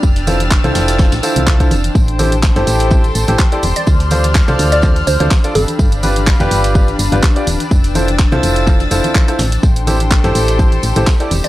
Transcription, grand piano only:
X:1
M:4/4
L:1/16
Q:"Swing 16ths" 1/4=125
K:Am
V:1 name="Grand piano"
z2 [EFAc] z2 [EFAc]3 [EFAc] z [EFAc]3 [EFAc] z2 | z2 [EGAc] z2 [EGAc]3 [EGAc] z2 [EGAc] z [EGAd] z2 | z2 [DFAc] z2 [DFAc]3 [DFAc] z2 [DFAc] z [DFAd] z2 | z2 [DFGB] z2 [DFGB]3 [DFGB] z2 [DFGB] z [DFGd] z2 |
z2 [EFAc] z2 [EFAc]3 [EFAc] z [EFAc]3 [EFAc] z2 | z2 [EGAc] z2 [EGAc]3 [EGAc] z2 [EGAc] z [EGAd] z2 |]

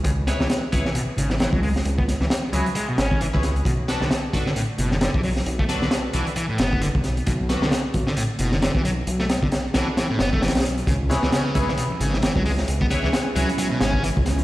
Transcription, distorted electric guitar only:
X:1
M:4/4
L:1/16
Q:"Swing 16ths" 1/4=133
K:C#phr
V:1 name="Distorted electric guitar" clef=bass
C, z2 E, z3 E, B,, z C, E, E, F, G, z | z B, z E, z2 F, z G, B,, C2 E, z3 | B,, z2 D, z3 D, A,, z B,, D, D, E, F, z | z A, z D, z2 E, z E, A,, B,2 D, z3 |
B,, z2 D, z3 D, A,, z B,, D, D, E, F, z | z A, z D, z2 E, z E, A,, B, A, E, z3 | C, z2 E, C,3 E, B,, z C, E, E, F, G, z | z B, z E, z2 F, z F, B,, C2 E, z3 |]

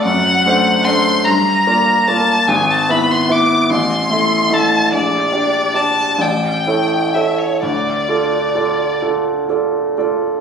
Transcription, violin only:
X:1
M:6/8
L:1/16
Q:3/8=48
K:Dm
V:1 name="Violin"
^f4 c'2 b4 a2 | ^g a =b c' d'2 c'4 a2 | d4 a2 g4 e ^c | d6 z6 |]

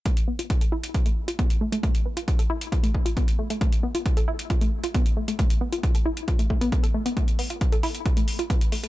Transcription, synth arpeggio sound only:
X:1
M:4/4
L:1/16
Q:1/4=135
K:C
V:1 name="Synth arpeggio sound"
A, z B, F z A E z F A, z F B, z A, A, | A, z B, F z A E z F A, z F B, z A, A, | A, z B, F z A E z F A, z F B, z A, A, | A, z B, F z A E z F A, A, B, A, A A, B, |
A, z B, F z A E z F A, z F B, z A, A, |]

